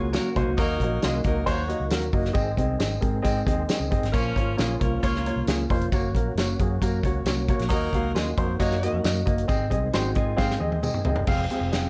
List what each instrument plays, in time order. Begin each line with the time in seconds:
Already playing: fingered electric bass C#2, tonewheel organ C#3 F#3 A#3 F#4, clean electric guitar F4 G#4
0.13 upright piano A#3 F#4 C#5, clean electric guitar F#4 A#4, snare, closed hi-hat, tambourine
0.36 fingered electric bass C2, upright piano A#3 F#4 C5, clean electric guitar D#4 F#4, kick, closed hi-hat
0.47 fingered electric bass C#2
0.57 fingered electric bass D#2, tonewheel organ D#3 F#4, saxophone section F#3 D#4 A#4, upright piano A#3 F#4 D#5, kick, closed hi-hat, tambourine
0.80 fingered electric bass A#1, upright piano A#3 F#4 D#5, kick, closed hi-hat
1.02 fingered electric bass C2, saxophone section G#3 F4 G#4, upright piano A#3 F#4 D#5, snare, closed hi-hat, tambourine
1.24 fingered electric bass C#2, saxophone section F#3 D#4 A#4, upright piano A#3 F#4 D#5, kick, closed hi-hat
1.46 fingered electric bass D#2, upright piano A#3 F#4 C5, saxophone section A#3 F#4 C#5, kick, closed hi-hat, tambourine
1.68 upright piano A#3 F#4 D#5, closed hi-hat
1.80 fingered electric bass C#2
1.90 fingered electric bass D#2, upright piano A#3 F#4 A#4, snare, closed hi-hat, tambourine
2.01 closed hi-hat
2.13 fingered electric bass F#1, upright piano A#3 F#4 D#5, kick, open hi-hat
2.25 snare
2.33 fingered electric bass G#1, tonewheel organ D#3 G#3 C4 G#4, upright piano C4 G#4 D#5, kick, closed hi-hat, tambourine
2.57 fingered electric bass C2, upright piano C4 G#4 D#5, kick, closed hi-hat
2.79 fingered electric bass G#1, upright piano C4 G#4 D#5, snare, closed hi-hat, tambourine
3.01 fingered electric bass G#2, upright piano C4 G#4 A#4, kick, closed hi-hat
3.22 fingered electric bass G#2, upright piano C4 G#4 D#5, kick, closed hi-hat, tambourine
3.46 fingered electric bass D#2, upright piano C4 G#4 D#5, kick, closed hi-hat
3.69 upright piano C4 G#4 D#5, snare, closed hi-hat, tambourine
3.80 fingered electric bass C#2
3.91 fingered electric bass F#1, upright piano C4 G#4 D#5, kick, closed hi-hat
4.02 fingered electric bass G#1, snare, closed hi-hat
4.12 fingered electric bass A#1, tonewheel organ F3 A#3 C#4 F4, saxophone section F3 C#4 A#4, upright piano A#3 F4 C#5, kick, closed hi-hat, tambourine
4.36 fingered electric bass G#1, upright piano A#3 F4 C#5, kick, closed hi-hat
4.57 fingered electric bass A#1, saxophone section G#3 F4 G#4, upright piano A#3 F4 C#5, snare, closed hi-hat, tambourine
4.79 fingered electric bass C2, saxophone section F3 C#4 A#4, upright piano A#3 F4 C#5, kick, closed hi-hat
5.03 fingered electric bass C#2, saxophone section A#3 F4 C#5, upright piano A#3 F4 C#5, kick, closed hi-hat, tambourine
5.15 snare
5.26 upright piano A#3 F4 C#5, closed hi-hat
5.36 fingered electric bass C2
5.47 fingered electric bass C#2, upright piano A#3 F4 G#4, snare, closed hi-hat, tambourine
5.70 fingered electric bass F1, upright piano A#3 F4 C5, kick, open hi-hat
5.81 closed hi-hat
5.92 fingered electric bass F#1, tonewheel organ F#3 A#3 F#4, upright piano A#3 F#4 C#5, kick, closed hi-hat, tambourine
6.14 fingered electric bass A#1, upright piano A#3 F#4 A#4, kick, closed hi-hat
6.35 fingered electric bass F#1, upright piano A#3 F#4 C#5, snare, closed hi-hat, tambourine
6.59 fingered electric bass F#2, upright piano A#3 F#4 G#4, kick, closed hi-hat
6.82 fingered electric bass F#2, upright piano A#3 F#4 A#4, kick, closed hi-hat, tambourine
7.03 fingered electric bass C#2, upright piano A#3 F#4 C#5, kick, closed hi-hat
7.24 fingered electric bass C2, upright piano A#3 F#4 C#5, snare, closed hi-hat, tambourine
7.48 upright piano A#3 F#4 C#5, kick, closed hi-hat
7.59 fingered electric bass A#1, snare, closed hi-hat
7.69 fingered electric bass D#2, tonewheel organ D#3 F#3 A#3, saxophone section F#3 D#4 A#4, upright piano A#3 F#4 D#5, kick, closed hi-hat, tambourine
7.93 fingered electric bass C#2, upright piano A#3 F#4 F5, kick, closed hi-hat
8.14 fingered electric bass D#2, saxophone section G#3 F4 G#4, upright piano A#3 F#4 D#5, snare, closed hi-hat, tambourine
8.37 fingered electric bass F2, saxophone section F#3 D#4 A#4, upright piano A#3 F#4 C5, kick, closed hi-hat
8.59 fingered electric bass F#2, saxophone section A#3 F#4 C#5, upright piano A#3 F#4 D#5, kick, closed hi-hat, tambourine
8.71 snare
8.82 upright piano A#3 F#4 D#5, closed hi-hat
8.93 fingered electric bass F2
9.04 fingered electric bass F#2, upright piano A#3 F#4 D#5, snare, closed hi-hat, tambourine
9.15 closed hi-hat
9.25 fingered electric bass F#1, upright piano A#3 F#4 D#5, kick, closed hi-hat
9.38 closed hi-hat
9.48 fingered electric bass G#1, tonewheel organ D#3 G#3 C4 G#4, upright piano C4 G#4 D#5, kick, closed hi-hat, tambourine
9.70 fingered electric bass C2, upright piano C4 G#4 D#5, kick, closed hi-hat
9.93 fingered electric bass G#1, upright piano C4 G#4 C5, clean electric guitar D#4 F#4, snare, closed hi-hat, tambourine
10.15 fingered electric bass G#2, upright piano C4 G#4 D#5, clean electric guitar F4 G#4, kick, closed hi-hat
10.36 fingered electric bass G#2, upright piano C4 G#4 F5, clean electric guitar G#4 C5, kick, snare, tambourine
10.51 snare
10.60 fingered electric bass D#2, upright piano C4 G#4 D#5, high tom
10.72 high tom
10.82 upright piano C4 G#4 D#5, mid tom, tambourine
10.94 mid tom
11.05 fingered electric bass C#2, upright piano C4 G#4 D#5, floor tom
11.16 fingered electric bass F#1, floor tom
11.27 fingered electric bass F1, tonewheel organ F3 G#3 C4 G#4, upright piano C4 G#4 F5, kick, crash, tambourine
11.50 upright piano C4 G#4 F5, closed hi-hat
11.61 fingered electric bass F1
11.72 upright piano C4 G#4 F5, snare, closed hi-hat, tambourine